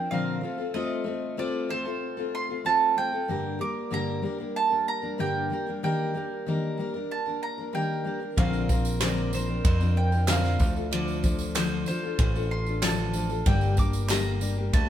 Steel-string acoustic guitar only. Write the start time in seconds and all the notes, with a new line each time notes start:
Already playing: F3 C4 D4 A#4
0.11 A#2 D3 F3 C4 D4 A#4
0.41 A3 C4 F4 A4
0.58 C4 F4 A4
0.74 A3 C4 F4 A4
1.04 A3 C4 F4 A4
1.37 A3 C4 F4 A4
1.69 A3 C4 F4 A4
1.85 C4 F4 A4
2.17 C4 F4 A4
2.49 C4 F4 A4
2.65 A3 C4 F4 A4
2.96 A3 C4 F4 A4
3.12 C4 F4 A4
3.28 G2 D3 G3 A#3 D4 A#4
3.59 G3 A#3 D4 A#4
3.91 G2 D3 G3 A#3 D4 A#4
4.22 G3 A#3 D4 A#4
4.38 G3 A#3 D4 A#4
4.70 G3 A#3 D4 A#4
5.02 G3 A#3 D4 A#4
5.18 G2 D3 G3 A#3 D4 A#4
5.50 G3 A#3 D4 A#4
5.66 G3 A#3 D4 A#4
5.83 D#3 G3 A#3 D4 A#4
6.14 G3 A#3 D4 A#4
6.46 D#3 G3 A#3 D4 A#4
6.78 G3 A#3 D4 A#4
6.94 A#3 D4 A#4
7.26 A#3 D4 A#4
7.58 A#3 D4 A#4
7.73 D#3 G3 A#3 D4 A#4
8.04 G3 A#3 D4 A#4
8.20 A#3 D4 A#4
8.36 A#2 D3 F3 C4 D4 A#4
8.68 F3 C4 D4 A#4
9.01 A#2 D3 F3 C4 D4 A#4
9.32 F3 C4 D4 A#4
9.48 F3 C4 D4 A#4
9.79 F3 C4 D4 A#4
10.12 F3 C4 D4 A#4
10.27 A#2 D3 F3 C4 D4 A#4
10.60 F3 D4 F4 A4
10.76 D4 F4 A4
10.91 D3 F3 D4 F4 A4
11.23 F3 D4 F4 A4
11.56 D3 F3 D4 F4 A4
11.88 F3 D4 F4 A4
12.03 D4 F4 A4
12.36 D4 F4 A4
12.67 D4 F4 A4
12.82 D3 F3 D4 F4 A4
13.15 F3 D4 F4 A4
13.29 D4 F4 A4
13.46 G2 D3 G3 A#3 D4 G4
13.77 G3 A#3 D4 G4
14.08 G2 D3 G3 A#3 D4 G4
14.40 G3 A#3 D4 G4
14.57 G3 A#3 D4 G4